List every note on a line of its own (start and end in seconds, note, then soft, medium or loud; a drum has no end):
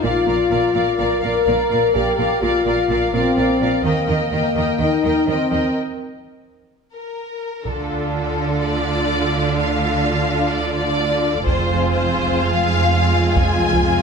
0.03 0.11 A#1 soft
0.03 0.11 A#2 soft
0.03 0.26 A#4 soft
0.03 0.27 D5 soft
0.03 0.27 F5 soft
0.07 1.01 F4 medium
0.26 0.35 A#1 soft
0.26 0.34 A#2 soft
0.26 0.50 A#4 soft
0.26 0.50 D5 soft
0.26 0.49 F5 soft
0.50 0.59 A#1 soft
0.50 0.59 A#2 soft
0.50 0.74 A#4 soft
0.50 0.74 D5 soft
0.50 0.72 F5 soft
0.73 0.82 A#1 soft
0.73 0.83 A#2 soft
0.73 0.96 A#4 soft
0.73 0.97 D5 soft
0.73 0.96 F5 soft
0.97 1.07 A#1 soft
0.97 1.06 A#2 soft
0.97 1.21 A#4 soft
0.97 1.93 A#4 medium
0.97 1.22 D5 soft
0.97 1.19 F5 soft
1.20 1.30 A#1 soft
1.20 1.32 A#2 soft
1.20 1.45 A#4 soft
1.20 1.45 D5 soft
1.20 1.43 F5 soft
1.44 1.54 A#1 soft
1.44 1.55 A#2 soft
1.44 1.69 A#4 soft
1.44 1.69 D5 soft
1.44 1.69 F5 soft
1.70 1.79 A#1 soft
1.70 1.79 A#2 soft
1.70 1.93 A#4 soft
1.70 1.93 D5 soft
1.70 1.94 F5 soft
1.94 2.03 A#1 soft
1.94 2.03 A#2 soft
1.94 2.42 G4 medium
1.94 2.16 A#4 soft
1.94 2.17 D5 soft
1.94 2.18 F5 soft
2.17 2.27 A#1 medium
2.17 2.26 A#2 soft
2.17 2.41 A#4 soft
2.17 2.41 D5 soft
2.17 2.42 F5 soft
2.41 2.50 A#1 soft
2.41 2.50 A#2 soft
2.41 3.13 F4 medium
2.41 2.65 A#4 soft
2.41 2.65 D5 soft
2.41 2.66 F5 soft
2.65 2.73 A#1 soft
2.65 2.73 A#2 soft
2.65 2.88 A#4 soft
2.65 2.88 D5 soft
2.65 2.90 F5 soft
2.89 2.97 A#1 soft
2.89 2.97 A#2 soft
2.89 3.13 A#4 soft
2.89 3.12 D5 soft
2.89 3.13 F5 soft
3.13 3.21 A#1 soft
3.13 3.21 A#2 soft
3.13 3.83 C4 medium
3.13 3.36 A#4 soft
3.13 3.36 D5 soft
3.13 3.36 F5 soft
3.36 3.45 A#1 soft
3.36 3.44 A#2 soft
3.36 3.60 A#4 soft
3.36 3.60 D5 soft
3.36 3.61 F5 soft
3.60 3.68 A#1 soft
3.60 3.69 A#2 soft
3.60 3.82 A#4 soft
3.60 3.85 D5 soft
3.60 3.85 F5 soft
3.83 3.91 D#2 soft
3.83 3.92 D#3 medium
3.83 4.32 A#3 medium
3.83 4.07 A#4 soft
3.83 4.07 D#5 soft
3.83 4.07 G5 soft
4.07 4.16 D#2 soft
4.07 4.15 D#3 soft
4.07 4.31 A#4 soft
4.07 4.31 D#5 soft
4.07 4.31 G5 soft
4.32 4.40 D#2 soft
4.32 4.40 D#3 soft
4.32 4.79 A#3 medium
4.32 4.55 A#4 soft
4.32 4.55 D#5 soft
4.32 4.55 G5 soft
4.56 4.64 D#2 soft
4.56 4.64 D#3 soft
4.56 4.78 A#4 soft
4.56 4.78 D#5 soft
4.56 4.79 D#5 soft
4.56 4.78 G5 soft
4.78 4.87 D#2 soft
4.78 4.86 D#3 soft
4.78 5.28 D#4 medium
4.78 5.02 A#4 soft
4.78 5.02 D#5 soft
4.78 5.03 D#5 soft
4.78 5.03 G5 soft
5.03 5.11 D#2 soft
5.03 5.11 D#3 soft
5.03 5.26 A#4 soft
5.03 5.26 D#5 soft
5.03 5.27 D#5 soft
5.03 5.27 G5 soft
5.26 5.35 D#2 soft
5.26 5.34 D#3 soft
5.26 5.76 C4 medium
5.26 5.50 A#4 soft
5.26 5.49 D#5 soft
5.26 5.50 D#5 soft
5.26 5.50 G5 soft
5.51 5.59 D#2 soft
5.51 5.59 D#3 soft
5.51 5.74 A#4 soft
5.51 5.74 D#5 soft
5.51 5.75 D#5 soft
5.51 5.75 G5 soft
6.93 7.61 A#4 soft
7.64 11.43 D2 soft
7.64 11.42 D3 soft
7.64 11.43 A3 soft
7.64 11.42 D4 soft
7.64 11.42 F4 soft
7.64 11.43 F4 soft
7.64 8.13 A4 soft
7.64 11.43 A4 soft
7.64 taiko medium
8.14 8.60 A4 medium
8.62 9.56 D5 medium
9.58 10.50 F5 medium
10.50 10.73 D5 medium
10.74 11.45 D5 medium
11.45 14.02 F1 soft
11.45 14.02 F2 soft
11.45 14.02 G#3 medium
11.45 14.02 C4 soft
11.45 14.02 F4 medium
11.45 14.02 F4 soft
11.45 14.02 F4 medium
11.45 14.02 G#4 medium
11.45 11.91 C5 medium
11.45 taiko medium
11.92 12.40 C5 medium
12.18 taiko soft
12.40 13.36 F5 medium
13.36 14.02 G#5 medium
13.36 taiko medium
13.72 taiko medium